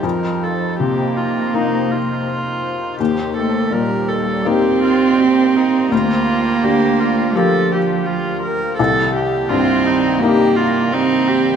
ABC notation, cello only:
X:1
M:4/4
L:1/8
Q:1/4=83
K:Cdor
V:1 name="Cello"
F,2 B,4- B, z | z A, G,2 C4 | B,4 F,4 | z2 C2 B,2 C2 |]